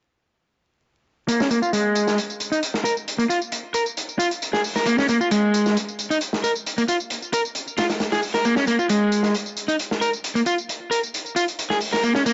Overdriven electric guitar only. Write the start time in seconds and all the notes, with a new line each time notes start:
1.28 A#3
1.40 C#4
1.51 A#3
1.62 F4
1.73 G#3
2.52 D#4
2.84 A#4
3.18 A#3
3.30 F4
3.74 A#4
4.19 F4
4.53 G#4
4.76 A#4
4.86 A#3
4.98 C#4
5.09 A#3
5.21 F4
5.31 G#3
6.10 D#4
6.44 A#4
6.78 A#3
6.89 F4
7.34 A#4
7.78 F4
8.12 G#4
8.34 A#4
8.45 A#3
8.57 C#4
8.67 A#3
8.79 F4
8.90 G#3
9.68 D#4
10.01 A#4
10.35 A#3
10.46 F4
10.91 A#4
11.36 F4
11.70 G#4
11.93 A#4
12.04 A#3
12.15 C#4
12.26 A#3